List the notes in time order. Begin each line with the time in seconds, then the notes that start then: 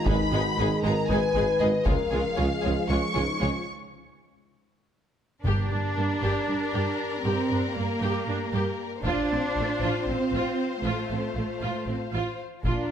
Already playing: D#3 G#3
0.06 G#1 G#2 G#3 D#4 G#4 B4 B5, taiko
0.32 G#1 G#2 G#3 D#4 F#4 G#4 B4
0.58 G#1 G#2 G#3 D#4 G#4 B4
0.83 G#1 G#2 G#3 D#4 G#4 A#4 B4 A#5
1.07 G#1 G#2 G#3 D#4 B4 G#5
1.12 G#4 B4
1.35 G#1 G#2 G#3 D#4 G#4 B4
1.60 G#1 G#2 G#3 D#4 G#4 B4 D#5
1.85 C#2 C#3 F3 G#3 F4 G#4 A#4 C#5 F5, taiko
2.11 C#2 C#3 G#3 F4 G#4 C#5
2.36 C#2 C#3 G#3 F4 G#4 C#5
2.61 C#2 C#3 G#3 F4 G#4 C#5
2.88 C#2 C#3 G#3 F4 G#4 C#5 C#6
3.14 C#2 C#3 G#3 D#4 F4 G#4 C#5
3.40 C#2 C#3 G#3 F4 G#4 C#5
5.44 G2 D4 G4 A#4 D5, taiko
5.71 G2 D4
5.96 G2 A#3
6.21 G2 G4, taiko
6.47 G2 D4
6.73 G2 G4
7.24 G2 C4 G4
7.49 G2 D4
7.76 G2 A#3
8.01 G2 G4
8.27 G2 D4
8.52 G2 G4
9.02 A1 D4 F4 C5 F5, taiko
9.30 A1 C4
9.55 A1 A3
9.81 A1 F4
10.07 A1 C4
10.32 A1 F4
10.83 A1 A3 F4
11.10 A1 C4
11.35 A1 A3
11.62 A1 F4
11.87 A1 C4
12.13 A1 F4
12.64 A#1 D4 F4 A#4 F5, taiko